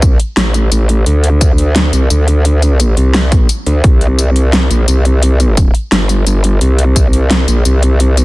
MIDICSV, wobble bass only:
0, 0, Header, 1, 2, 480
1, 0, Start_track
1, 0, Tempo, 346821
1, 1473, Time_signature, 4, 2, 24, 8
1, 11412, End_track
2, 0, Start_track
2, 0, Title_t, "Wobble bass"
2, 0, Program_c, 0, 39
2, 0, Note_on_c, 0, 37, 101
2, 252, Note_off_c, 0, 37, 0
2, 511, Note_on_c, 0, 33, 98
2, 973, Note_off_c, 0, 33, 0
2, 991, Note_on_c, 0, 33, 101
2, 1453, Note_off_c, 0, 33, 0
2, 1471, Note_on_c, 0, 38, 96
2, 2652, Note_off_c, 0, 38, 0
2, 2671, Note_on_c, 0, 36, 97
2, 2892, Note_off_c, 0, 36, 0
2, 2911, Note_on_c, 0, 38, 100
2, 4092, Note_off_c, 0, 38, 0
2, 4111, Note_on_c, 0, 36, 105
2, 4812, Note_off_c, 0, 36, 0
2, 5072, Note_on_c, 0, 38, 96
2, 5293, Note_off_c, 0, 38, 0
2, 5313, Note_on_c, 0, 36, 97
2, 6493, Note_off_c, 0, 36, 0
2, 6511, Note_on_c, 0, 34, 95
2, 6732, Note_off_c, 0, 34, 0
2, 6751, Note_on_c, 0, 36, 102
2, 7933, Note_off_c, 0, 36, 0
2, 8191, Note_on_c, 0, 31, 96
2, 8652, Note_off_c, 0, 31, 0
2, 8670, Note_on_c, 0, 31, 101
2, 9132, Note_off_c, 0, 31, 0
2, 9151, Note_on_c, 0, 36, 96
2, 10332, Note_off_c, 0, 36, 0
2, 10350, Note_on_c, 0, 34, 94
2, 10572, Note_off_c, 0, 34, 0
2, 10591, Note_on_c, 0, 36, 103
2, 11412, Note_off_c, 0, 36, 0
2, 11412, End_track
0, 0, End_of_file